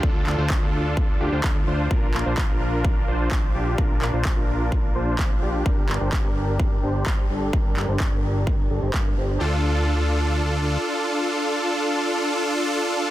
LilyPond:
<<
  \new Staff \with { instrumentName = "Supersaw synth" } { \time 4/4 \key d \minor \tempo 4 = 128 <d' f' a'>8 <d' f' a'>16 <d' f' c''>8 <d' f' a'>4~ <d' f' a'>16 <d' f' g'>16 <d' f' c''>16 <d' f' a'>16 r16 <d' f' c''>8 | <d' f' bes'>8 <d' f' bes'>16 <d' f' c''>8 <d' f' bes'>4~ <d' f' bes'>16 <d' f' c''>4 <d' f' g'>8 | <d' f' bes'>8 <d' f' bes'>16 <d' f' c''>8 <d' f' bes'>4~ <d' f' bes'>16 <d' f' c''>4 <d' f' g'>8 | <d' g' bes'>8 <d' g' bes'>16 <d' g' c''>8 <d' g' bes'>4~ <d' g' bes'>16 <d' g' c''>4 <d' g' a'>8 |
<d' g' bes'>8 <d' g' bes'>16 <d' g' c''>8 <d' g' bes'>4~ <d' g' bes'>16 <d' g' a'>16 <d' g' c''>16 <d' g' bes'>16 r16 <d' g' c''>8 | <d' f' a'>1~ | <d' f' a'>1 | }
  \new Staff \with { instrumentName = "Analog synth bass" } { \clef bass \time 4/4 \key d \minor d,8 d,16 d,8 d,4~ d,16 d,16 d,16 d,8 d,8 | bes,,8 bes,,16 bes,,8 bes,,4~ bes,,16 bes,,4 bes,,8 | bes,,8 bes,,16 bes,,8 bes,,4~ bes,,16 bes,,4 bes,,8 | g,,8 g,,16 g,,8 g,,4~ g,,16 g,,4 g,,8 |
g,,8 g,,16 g,,8 g,,4~ g,,16 g,,16 g,,16 g,8 g,,8 | d,2. r4 | r1 | }
  \new DrumStaff \with { instrumentName = "Drums" } \drummode { \time 4/4 bd8 hc8 <hc bd>4 bd4 <hc bd>4 | bd8 hc8 <hc bd>4 bd4 <hc bd>4 | bd8 hc8 <hc bd>4 bd4 <hc bd>4 | bd8 hc8 <hc bd>4 bd4 <hc bd>4 |
bd8 hc8 <hc bd>4 bd4 <hc bd>4 | r4 r4 r4 r4 | r4 r4 r4 r4 | }
>>